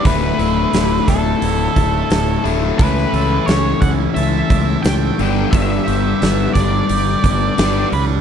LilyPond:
<<
  \new Staff \with { instrumentName = "Lead electric guitar" } { \time 4/4 \key g \lydian \tempo 4 = 88 b'4. a'2 r8 | b'4 cis''8 fis''8 e''4 g''4 | e''4. d''2 b'8 | }
  \new Staff \with { instrumentName = "Overdriven electric guitar" } { \time 4/4 \key g \lydian d,8 e'8 d8 a8 e'8 a8 a,8 a8 | a,8 a'8 cis'8 e'8 a'8 e'8 a8 g,8 | g,8 g'8 b8 d'8 g'8 d'8 g8 d'8 | }
  \new Staff \with { instrumentName = "Overdriven electric guitar" } { \clef bass \time 4/4 \key g \lydian <d, a, d a e'>2.~ <d, a, d a e'>8 <d, a, d a e'>8 | <a, e a cis' e' a'>2.~ <a, e a cis' e' a'>8 <g, d g b d' g'>8~ | <g, d g b d' g'>2. <g, d g b d' g'>8 r8 | }
  \new Staff \with { instrumentName = "Fingered electric bass" } { \clef bass \time 4/4 \key g \lydian d,,8 d,,8 d,,8 d,,8 d,,8 d,,8 d,,8 d,,8 | cis,8 cis,8 cis,8 cis,8 cis,8 cis,8 cis,8 g,,8 | g,,8 g,,8 g,,8 g,,8 g,,8 g,,8 g,,8 cis,8 | }
  \new DrumStaff \with { instrumentName = "Drums" } \drummode { \time 4/4 <hho bd>8 hho8 <hho sn>8 <hho bd sn>8 hho8 <hho bd>8 <hho sn>8 hho8 | <hho bd>16 sn16 hho8 <hho sn>8 <hho bd>8 hho8 <hho bd>8 <hho sn>8 hho8 | <hho bd>8 hho8 <hho sn>8 <hho bd sn>8 hho8 <hho bd>8 <hho sn>8 hho8 | }
>>